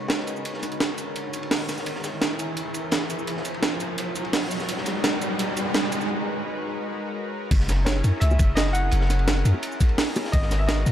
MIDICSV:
0, 0, Header, 1, 6, 480
1, 0, Start_track
1, 0, Key_signature, 5, "minor"
1, 0, Tempo, 352941
1, 616, Time_signature, 4, 2, 24, 8
1, 14850, End_track
2, 0, Start_track
2, 0, Title_t, "Grand piano"
2, 0, Program_c, 0, 0
2, 10678, Note_on_c, 0, 73, 89
2, 11156, Note_on_c, 0, 76, 115
2, 11182, Note_off_c, 0, 73, 0
2, 11612, Note_off_c, 0, 76, 0
2, 11633, Note_on_c, 0, 75, 100
2, 11872, Note_on_c, 0, 78, 125
2, 11893, Note_off_c, 0, 75, 0
2, 13750, Note_off_c, 0, 78, 0
2, 14038, Note_on_c, 0, 75, 100
2, 14399, Note_on_c, 0, 76, 90
2, 14420, Note_off_c, 0, 75, 0
2, 14517, Note_on_c, 0, 75, 93
2, 14531, Note_off_c, 0, 76, 0
2, 14850, Note_off_c, 0, 75, 0
2, 14850, End_track
3, 0, Start_track
3, 0, Title_t, "Analog synth pad"
3, 0, Program_c, 1, 89
3, 0, Note_on_c, 1, 56, 81
3, 0, Note_on_c, 1, 63, 72
3, 0, Note_on_c, 1, 66, 70
3, 0, Note_on_c, 1, 70, 69
3, 0, Note_on_c, 1, 71, 68
3, 0, Note_on_c, 1, 73, 84
3, 2483, Note_off_c, 1, 63, 0
3, 2497, Note_off_c, 1, 56, 0
3, 2497, Note_off_c, 1, 71, 0
3, 2498, Note_off_c, 1, 66, 0
3, 2532, Note_on_c, 1, 64, 76
3, 2535, Note_on_c, 1, 68, 74
3, 6098, Note_off_c, 1, 64, 0
3, 6100, Note_off_c, 1, 68, 0
3, 6137, Note_on_c, 1, 56, 76
3, 6137, Note_on_c, 1, 63, 67
3, 6137, Note_on_c, 1, 66, 72
3, 6137, Note_on_c, 1, 71, 67
3, 10162, Note_off_c, 1, 70, 0
3, 10162, Note_off_c, 1, 73, 0
3, 10176, Note_off_c, 1, 56, 0
3, 10176, Note_off_c, 1, 63, 0
3, 10176, Note_off_c, 1, 66, 0
3, 10176, Note_off_c, 1, 71, 0
3, 10213, Note_on_c, 1, 61, 80
3, 10213, Note_on_c, 1, 70, 89
3, 10214, Note_on_c, 1, 68, 71
3, 10216, Note_on_c, 1, 64, 74
3, 14016, Note_off_c, 1, 61, 0
3, 14017, Note_off_c, 1, 68, 0
3, 14018, Note_off_c, 1, 64, 0
3, 14055, Note_on_c, 1, 61, 72
3, 14056, Note_on_c, 1, 59, 81
3, 14056, Note_on_c, 1, 66, 72
3, 14850, Note_off_c, 1, 59, 0
3, 14850, Note_off_c, 1, 61, 0
3, 14850, Note_off_c, 1, 66, 0
3, 14850, Note_off_c, 1, 70, 0
3, 14850, End_track
4, 0, Start_track
4, 0, Title_t, "808-style bass"
4, 0, Program_c, 2, 38
4, 10216, Note_on_c, 2, 30, 94
4, 10917, Note_off_c, 2, 30, 0
4, 10937, Note_on_c, 2, 42, 97
4, 11046, Note_off_c, 2, 42, 0
4, 11175, Note_on_c, 2, 37, 110
4, 11392, Note_off_c, 2, 37, 0
4, 11416, Note_on_c, 2, 30, 81
4, 12117, Note_off_c, 2, 30, 0
4, 12138, Note_on_c, 2, 30, 99
4, 12838, Note_off_c, 2, 30, 0
4, 12856, Note_on_c, 2, 42, 103
4, 12965, Note_off_c, 2, 42, 0
4, 14055, Note_on_c, 2, 32, 96
4, 14757, Note_off_c, 2, 32, 0
4, 14775, Note_on_c, 2, 44, 102
4, 14850, Note_off_c, 2, 44, 0
4, 14850, End_track
5, 0, Start_track
5, 0, Title_t, "Riser"
5, 0, Program_c, 3, 103
5, 0, Note_on_c, 3, 60, 79
5, 8296, Note_off_c, 3, 60, 0
5, 14850, End_track
6, 0, Start_track
6, 0, Title_t, "Drums"
6, 115, Note_on_c, 9, 38, 110
6, 134, Note_off_c, 9, 38, 0
6, 134, Note_on_c, 9, 38, 115
6, 134, Note_on_c, 9, 42, 80
6, 142, Note_on_c, 9, 51, 87
6, 256, Note_off_c, 9, 38, 0
6, 256, Note_on_c, 9, 38, 48
6, 270, Note_off_c, 9, 42, 0
6, 278, Note_off_c, 9, 51, 0
6, 368, Note_on_c, 9, 51, 68
6, 374, Note_on_c, 9, 42, 59
6, 374, Note_on_c, 9, 82, 49
6, 392, Note_off_c, 9, 38, 0
6, 496, Note_off_c, 9, 82, 0
6, 496, Note_on_c, 9, 82, 26
6, 504, Note_off_c, 9, 51, 0
6, 510, Note_off_c, 9, 42, 0
6, 613, Note_on_c, 9, 42, 81
6, 615, Note_on_c, 9, 51, 82
6, 632, Note_off_c, 9, 82, 0
6, 731, Note_on_c, 9, 38, 40
6, 749, Note_off_c, 9, 42, 0
6, 751, Note_off_c, 9, 51, 0
6, 852, Note_on_c, 9, 51, 67
6, 855, Note_on_c, 9, 40, 31
6, 855, Note_on_c, 9, 42, 58
6, 855, Note_on_c, 9, 82, 54
6, 867, Note_off_c, 9, 38, 0
6, 976, Note_off_c, 9, 42, 0
6, 976, Note_on_c, 9, 42, 34
6, 978, Note_off_c, 9, 51, 0
6, 978, Note_on_c, 9, 51, 40
6, 991, Note_off_c, 9, 40, 0
6, 991, Note_off_c, 9, 82, 0
6, 1094, Note_off_c, 9, 42, 0
6, 1094, Note_off_c, 9, 51, 0
6, 1094, Note_on_c, 9, 38, 115
6, 1094, Note_on_c, 9, 42, 81
6, 1094, Note_on_c, 9, 51, 94
6, 1100, Note_off_c, 9, 38, 0
6, 1100, Note_on_c, 9, 38, 124
6, 1230, Note_off_c, 9, 42, 0
6, 1230, Note_off_c, 9, 51, 0
6, 1236, Note_off_c, 9, 38, 0
6, 1329, Note_on_c, 9, 51, 61
6, 1332, Note_on_c, 9, 42, 59
6, 1332, Note_on_c, 9, 82, 56
6, 1465, Note_off_c, 9, 51, 0
6, 1468, Note_off_c, 9, 42, 0
6, 1468, Note_off_c, 9, 82, 0
6, 1574, Note_on_c, 9, 42, 82
6, 1577, Note_on_c, 9, 51, 81
6, 1710, Note_off_c, 9, 42, 0
6, 1713, Note_off_c, 9, 51, 0
6, 1815, Note_on_c, 9, 42, 62
6, 1815, Note_on_c, 9, 51, 67
6, 1815, Note_on_c, 9, 82, 58
6, 1942, Note_off_c, 9, 51, 0
6, 1942, Note_on_c, 9, 51, 48
6, 1951, Note_off_c, 9, 42, 0
6, 1951, Note_off_c, 9, 82, 0
6, 2055, Note_on_c, 9, 46, 82
6, 2056, Note_on_c, 9, 38, 123
6, 2056, Note_on_c, 9, 42, 86
6, 2058, Note_off_c, 9, 38, 0
6, 2058, Note_on_c, 9, 38, 107
6, 2078, Note_off_c, 9, 51, 0
6, 2191, Note_off_c, 9, 46, 0
6, 2192, Note_off_c, 9, 42, 0
6, 2194, Note_off_c, 9, 38, 0
6, 2295, Note_on_c, 9, 38, 35
6, 2295, Note_on_c, 9, 42, 57
6, 2295, Note_on_c, 9, 82, 55
6, 2296, Note_on_c, 9, 51, 66
6, 2414, Note_off_c, 9, 38, 0
6, 2414, Note_on_c, 9, 38, 44
6, 2416, Note_off_c, 9, 82, 0
6, 2416, Note_on_c, 9, 82, 27
6, 2431, Note_off_c, 9, 42, 0
6, 2432, Note_off_c, 9, 51, 0
6, 2533, Note_on_c, 9, 42, 81
6, 2535, Note_on_c, 9, 51, 96
6, 2550, Note_off_c, 9, 38, 0
6, 2552, Note_off_c, 9, 82, 0
6, 2651, Note_on_c, 9, 38, 41
6, 2669, Note_off_c, 9, 42, 0
6, 2671, Note_off_c, 9, 51, 0
6, 2770, Note_on_c, 9, 51, 59
6, 2774, Note_on_c, 9, 42, 59
6, 2774, Note_on_c, 9, 82, 58
6, 2779, Note_off_c, 9, 38, 0
6, 2779, Note_on_c, 9, 38, 47
6, 2906, Note_off_c, 9, 51, 0
6, 2910, Note_off_c, 9, 42, 0
6, 2910, Note_off_c, 9, 82, 0
6, 2915, Note_off_c, 9, 38, 0
6, 3011, Note_on_c, 9, 38, 107
6, 3013, Note_on_c, 9, 51, 80
6, 3014, Note_off_c, 9, 38, 0
6, 3014, Note_on_c, 9, 38, 117
6, 3014, Note_on_c, 9, 42, 87
6, 3149, Note_off_c, 9, 51, 0
6, 3150, Note_off_c, 9, 38, 0
6, 3150, Note_off_c, 9, 42, 0
6, 3254, Note_on_c, 9, 42, 62
6, 3254, Note_on_c, 9, 82, 57
6, 3258, Note_on_c, 9, 51, 68
6, 3390, Note_off_c, 9, 42, 0
6, 3390, Note_off_c, 9, 82, 0
6, 3394, Note_off_c, 9, 51, 0
6, 3491, Note_on_c, 9, 51, 80
6, 3493, Note_on_c, 9, 42, 85
6, 3627, Note_off_c, 9, 51, 0
6, 3629, Note_off_c, 9, 42, 0
6, 3728, Note_on_c, 9, 51, 64
6, 3735, Note_on_c, 9, 42, 62
6, 3735, Note_on_c, 9, 82, 61
6, 3864, Note_off_c, 9, 51, 0
6, 3871, Note_off_c, 9, 42, 0
6, 3871, Note_off_c, 9, 82, 0
6, 3964, Note_on_c, 9, 51, 88
6, 3973, Note_on_c, 9, 38, 113
6, 3973, Note_on_c, 9, 42, 87
6, 3981, Note_off_c, 9, 38, 0
6, 3981, Note_on_c, 9, 38, 127
6, 4099, Note_off_c, 9, 38, 0
6, 4099, Note_on_c, 9, 38, 46
6, 4100, Note_off_c, 9, 51, 0
6, 4109, Note_off_c, 9, 42, 0
6, 4214, Note_on_c, 9, 42, 60
6, 4214, Note_on_c, 9, 82, 58
6, 4217, Note_on_c, 9, 51, 59
6, 4235, Note_off_c, 9, 38, 0
6, 4336, Note_off_c, 9, 82, 0
6, 4336, Note_on_c, 9, 82, 28
6, 4350, Note_off_c, 9, 42, 0
6, 4353, Note_off_c, 9, 51, 0
6, 4453, Note_on_c, 9, 42, 86
6, 4455, Note_on_c, 9, 51, 81
6, 4472, Note_off_c, 9, 82, 0
6, 4580, Note_on_c, 9, 38, 41
6, 4589, Note_off_c, 9, 42, 0
6, 4591, Note_off_c, 9, 51, 0
6, 4690, Note_on_c, 9, 51, 65
6, 4692, Note_on_c, 9, 42, 64
6, 4692, Note_on_c, 9, 82, 58
6, 4716, Note_off_c, 9, 38, 0
6, 4818, Note_off_c, 9, 51, 0
6, 4818, Note_on_c, 9, 51, 44
6, 4828, Note_off_c, 9, 42, 0
6, 4828, Note_off_c, 9, 82, 0
6, 4931, Note_on_c, 9, 38, 113
6, 4931, Note_on_c, 9, 42, 85
6, 4938, Note_off_c, 9, 51, 0
6, 4938, Note_on_c, 9, 51, 88
6, 4941, Note_off_c, 9, 38, 0
6, 4941, Note_on_c, 9, 38, 119
6, 5067, Note_off_c, 9, 42, 0
6, 5074, Note_off_c, 9, 51, 0
6, 5077, Note_off_c, 9, 38, 0
6, 5171, Note_on_c, 9, 42, 65
6, 5171, Note_on_c, 9, 82, 60
6, 5181, Note_on_c, 9, 51, 64
6, 5307, Note_off_c, 9, 42, 0
6, 5307, Note_off_c, 9, 82, 0
6, 5317, Note_off_c, 9, 51, 0
6, 5412, Note_on_c, 9, 42, 89
6, 5415, Note_on_c, 9, 51, 81
6, 5548, Note_off_c, 9, 42, 0
6, 5551, Note_off_c, 9, 51, 0
6, 5652, Note_on_c, 9, 42, 69
6, 5652, Note_on_c, 9, 82, 64
6, 5664, Note_on_c, 9, 51, 66
6, 5774, Note_off_c, 9, 51, 0
6, 5774, Note_on_c, 9, 51, 49
6, 5788, Note_off_c, 9, 42, 0
6, 5788, Note_off_c, 9, 82, 0
6, 5893, Note_on_c, 9, 38, 112
6, 5893, Note_on_c, 9, 42, 91
6, 5897, Note_off_c, 9, 38, 0
6, 5897, Note_on_c, 9, 38, 122
6, 5897, Note_on_c, 9, 46, 80
6, 5910, Note_off_c, 9, 51, 0
6, 6029, Note_off_c, 9, 42, 0
6, 6033, Note_off_c, 9, 38, 0
6, 6033, Note_off_c, 9, 46, 0
6, 6133, Note_on_c, 9, 42, 61
6, 6133, Note_on_c, 9, 82, 59
6, 6148, Note_on_c, 9, 51, 69
6, 6253, Note_on_c, 9, 38, 49
6, 6254, Note_off_c, 9, 82, 0
6, 6254, Note_on_c, 9, 82, 29
6, 6269, Note_off_c, 9, 42, 0
6, 6284, Note_off_c, 9, 51, 0
6, 6374, Note_on_c, 9, 42, 94
6, 6380, Note_on_c, 9, 51, 82
6, 6389, Note_off_c, 9, 38, 0
6, 6390, Note_off_c, 9, 82, 0
6, 6490, Note_on_c, 9, 38, 45
6, 6510, Note_off_c, 9, 42, 0
6, 6516, Note_off_c, 9, 51, 0
6, 6606, Note_on_c, 9, 51, 70
6, 6612, Note_on_c, 9, 42, 66
6, 6612, Note_on_c, 9, 82, 59
6, 6625, Note_off_c, 9, 38, 0
6, 6625, Note_on_c, 9, 38, 48
6, 6742, Note_off_c, 9, 51, 0
6, 6748, Note_off_c, 9, 42, 0
6, 6748, Note_off_c, 9, 82, 0
6, 6761, Note_off_c, 9, 38, 0
6, 6853, Note_on_c, 9, 38, 111
6, 6853, Note_on_c, 9, 42, 97
6, 6854, Note_off_c, 9, 38, 0
6, 6854, Note_on_c, 9, 38, 116
6, 6864, Note_on_c, 9, 51, 85
6, 6989, Note_off_c, 9, 42, 0
6, 6990, Note_off_c, 9, 38, 0
6, 7000, Note_off_c, 9, 51, 0
6, 7093, Note_on_c, 9, 42, 68
6, 7093, Note_on_c, 9, 82, 59
6, 7100, Note_on_c, 9, 51, 67
6, 7229, Note_off_c, 9, 42, 0
6, 7229, Note_off_c, 9, 82, 0
6, 7236, Note_off_c, 9, 51, 0
6, 7334, Note_on_c, 9, 42, 93
6, 7345, Note_on_c, 9, 51, 88
6, 7470, Note_off_c, 9, 42, 0
6, 7481, Note_off_c, 9, 51, 0
6, 7574, Note_on_c, 9, 42, 74
6, 7574, Note_on_c, 9, 82, 61
6, 7575, Note_on_c, 9, 51, 66
6, 7710, Note_off_c, 9, 42, 0
6, 7710, Note_off_c, 9, 82, 0
6, 7711, Note_off_c, 9, 51, 0
6, 7810, Note_on_c, 9, 51, 93
6, 7813, Note_on_c, 9, 38, 109
6, 7813, Note_on_c, 9, 42, 94
6, 7816, Note_off_c, 9, 38, 0
6, 7816, Note_on_c, 9, 38, 124
6, 7930, Note_off_c, 9, 38, 0
6, 7930, Note_on_c, 9, 38, 52
6, 7946, Note_off_c, 9, 51, 0
6, 7949, Note_off_c, 9, 42, 0
6, 8049, Note_on_c, 9, 51, 71
6, 8054, Note_on_c, 9, 42, 64
6, 8054, Note_on_c, 9, 82, 61
6, 8066, Note_off_c, 9, 38, 0
6, 8176, Note_off_c, 9, 82, 0
6, 8176, Note_on_c, 9, 82, 30
6, 8185, Note_off_c, 9, 51, 0
6, 8190, Note_off_c, 9, 42, 0
6, 8312, Note_off_c, 9, 82, 0
6, 10216, Note_on_c, 9, 42, 96
6, 10216, Note_on_c, 9, 49, 98
6, 10217, Note_on_c, 9, 36, 120
6, 10217, Note_on_c, 9, 51, 91
6, 10335, Note_on_c, 9, 38, 38
6, 10352, Note_off_c, 9, 42, 0
6, 10352, Note_off_c, 9, 49, 0
6, 10353, Note_off_c, 9, 36, 0
6, 10353, Note_off_c, 9, 51, 0
6, 10456, Note_on_c, 9, 40, 33
6, 10456, Note_on_c, 9, 42, 70
6, 10456, Note_on_c, 9, 82, 58
6, 10458, Note_on_c, 9, 51, 73
6, 10460, Note_off_c, 9, 38, 0
6, 10460, Note_on_c, 9, 38, 46
6, 10592, Note_off_c, 9, 40, 0
6, 10592, Note_off_c, 9, 42, 0
6, 10592, Note_off_c, 9, 82, 0
6, 10594, Note_off_c, 9, 51, 0
6, 10596, Note_off_c, 9, 38, 0
6, 10693, Note_on_c, 9, 38, 126
6, 10694, Note_on_c, 9, 51, 89
6, 10696, Note_on_c, 9, 60, 49
6, 10697, Note_off_c, 9, 38, 0
6, 10697, Note_on_c, 9, 38, 117
6, 10697, Note_on_c, 9, 42, 94
6, 10830, Note_off_c, 9, 51, 0
6, 10832, Note_off_c, 9, 60, 0
6, 10833, Note_off_c, 9, 38, 0
6, 10833, Note_off_c, 9, 42, 0
6, 10933, Note_on_c, 9, 51, 73
6, 10938, Note_on_c, 9, 42, 66
6, 10938, Note_on_c, 9, 82, 61
6, 11069, Note_off_c, 9, 51, 0
6, 11074, Note_off_c, 9, 42, 0
6, 11074, Note_off_c, 9, 82, 0
6, 11165, Note_on_c, 9, 51, 86
6, 11175, Note_on_c, 9, 42, 93
6, 11298, Note_on_c, 9, 82, 27
6, 11301, Note_off_c, 9, 51, 0
6, 11307, Note_on_c, 9, 60, 57
6, 11311, Note_off_c, 9, 42, 0
6, 11411, Note_on_c, 9, 51, 74
6, 11416, Note_off_c, 9, 82, 0
6, 11416, Note_on_c, 9, 42, 67
6, 11416, Note_on_c, 9, 82, 60
6, 11417, Note_on_c, 9, 36, 109
6, 11443, Note_off_c, 9, 60, 0
6, 11547, Note_off_c, 9, 51, 0
6, 11552, Note_off_c, 9, 42, 0
6, 11552, Note_off_c, 9, 82, 0
6, 11553, Note_off_c, 9, 36, 0
6, 11648, Note_on_c, 9, 51, 88
6, 11656, Note_on_c, 9, 38, 115
6, 11656, Note_on_c, 9, 42, 96
6, 11662, Note_off_c, 9, 38, 0
6, 11662, Note_on_c, 9, 38, 109
6, 11783, Note_off_c, 9, 38, 0
6, 11783, Note_on_c, 9, 38, 45
6, 11784, Note_off_c, 9, 51, 0
6, 11792, Note_off_c, 9, 42, 0
6, 11893, Note_on_c, 9, 51, 60
6, 11897, Note_on_c, 9, 42, 70
6, 11897, Note_on_c, 9, 82, 55
6, 11919, Note_off_c, 9, 38, 0
6, 12029, Note_off_c, 9, 51, 0
6, 12033, Note_off_c, 9, 42, 0
6, 12033, Note_off_c, 9, 82, 0
6, 12123, Note_on_c, 9, 51, 89
6, 12136, Note_on_c, 9, 42, 85
6, 12253, Note_on_c, 9, 38, 44
6, 12259, Note_off_c, 9, 51, 0
6, 12272, Note_off_c, 9, 42, 0
6, 12376, Note_on_c, 9, 40, 34
6, 12376, Note_on_c, 9, 42, 66
6, 12376, Note_on_c, 9, 82, 55
6, 12381, Note_on_c, 9, 51, 67
6, 12389, Note_off_c, 9, 38, 0
6, 12498, Note_off_c, 9, 51, 0
6, 12498, Note_on_c, 9, 51, 41
6, 12512, Note_off_c, 9, 40, 0
6, 12512, Note_off_c, 9, 42, 0
6, 12512, Note_off_c, 9, 82, 0
6, 12615, Note_off_c, 9, 51, 0
6, 12615, Note_on_c, 9, 51, 93
6, 12616, Note_on_c, 9, 38, 120
6, 12616, Note_on_c, 9, 42, 97
6, 12617, Note_off_c, 9, 38, 0
6, 12617, Note_on_c, 9, 38, 119
6, 12624, Note_on_c, 9, 60, 55
6, 12738, Note_on_c, 9, 40, 36
6, 12751, Note_off_c, 9, 51, 0
6, 12752, Note_off_c, 9, 42, 0
6, 12753, Note_off_c, 9, 38, 0
6, 12760, Note_off_c, 9, 60, 0
6, 12856, Note_on_c, 9, 42, 64
6, 12856, Note_on_c, 9, 82, 56
6, 12857, Note_on_c, 9, 51, 70
6, 12874, Note_off_c, 9, 40, 0
6, 12977, Note_on_c, 9, 60, 38
6, 12992, Note_off_c, 9, 42, 0
6, 12992, Note_off_c, 9, 82, 0
6, 12993, Note_off_c, 9, 51, 0
6, 13091, Note_on_c, 9, 51, 88
6, 13096, Note_on_c, 9, 42, 96
6, 13113, Note_off_c, 9, 60, 0
6, 13218, Note_on_c, 9, 82, 28
6, 13227, Note_off_c, 9, 51, 0
6, 13232, Note_off_c, 9, 42, 0
6, 13335, Note_off_c, 9, 82, 0
6, 13335, Note_on_c, 9, 42, 73
6, 13335, Note_on_c, 9, 82, 60
6, 13336, Note_on_c, 9, 36, 113
6, 13340, Note_on_c, 9, 51, 77
6, 13449, Note_off_c, 9, 51, 0
6, 13449, Note_on_c, 9, 51, 42
6, 13471, Note_off_c, 9, 42, 0
6, 13471, Note_off_c, 9, 82, 0
6, 13472, Note_off_c, 9, 36, 0
6, 13574, Note_on_c, 9, 38, 124
6, 13574, Note_on_c, 9, 42, 87
6, 13578, Note_on_c, 9, 46, 82
6, 13585, Note_off_c, 9, 51, 0
6, 13710, Note_off_c, 9, 38, 0
6, 13710, Note_off_c, 9, 42, 0
6, 13714, Note_off_c, 9, 46, 0
6, 13815, Note_on_c, 9, 42, 67
6, 13815, Note_on_c, 9, 82, 55
6, 13821, Note_on_c, 9, 60, 73
6, 13827, Note_on_c, 9, 51, 66
6, 13943, Note_on_c, 9, 38, 49
6, 13951, Note_off_c, 9, 42, 0
6, 13951, Note_off_c, 9, 82, 0
6, 13957, Note_off_c, 9, 60, 0
6, 13963, Note_off_c, 9, 51, 0
6, 14055, Note_on_c, 9, 42, 86
6, 14056, Note_on_c, 9, 36, 120
6, 14060, Note_on_c, 9, 51, 81
6, 14079, Note_off_c, 9, 38, 0
6, 14173, Note_on_c, 9, 38, 42
6, 14191, Note_off_c, 9, 42, 0
6, 14192, Note_off_c, 9, 36, 0
6, 14196, Note_off_c, 9, 51, 0
6, 14295, Note_on_c, 9, 40, 33
6, 14295, Note_on_c, 9, 42, 62
6, 14295, Note_on_c, 9, 82, 53
6, 14304, Note_on_c, 9, 51, 66
6, 14306, Note_off_c, 9, 38, 0
6, 14306, Note_on_c, 9, 38, 46
6, 14431, Note_off_c, 9, 40, 0
6, 14431, Note_off_c, 9, 42, 0
6, 14431, Note_off_c, 9, 82, 0
6, 14440, Note_off_c, 9, 51, 0
6, 14442, Note_off_c, 9, 38, 0
6, 14531, Note_on_c, 9, 51, 91
6, 14532, Note_on_c, 9, 38, 117
6, 14534, Note_off_c, 9, 38, 0
6, 14534, Note_on_c, 9, 38, 116
6, 14534, Note_on_c, 9, 42, 93
6, 14534, Note_on_c, 9, 60, 58
6, 14667, Note_off_c, 9, 51, 0
6, 14670, Note_off_c, 9, 38, 0
6, 14670, Note_off_c, 9, 42, 0
6, 14670, Note_off_c, 9, 60, 0
6, 14774, Note_on_c, 9, 42, 65
6, 14774, Note_on_c, 9, 82, 57
6, 14783, Note_on_c, 9, 51, 67
6, 14850, Note_off_c, 9, 42, 0
6, 14850, Note_off_c, 9, 51, 0
6, 14850, Note_off_c, 9, 82, 0
6, 14850, End_track
0, 0, End_of_file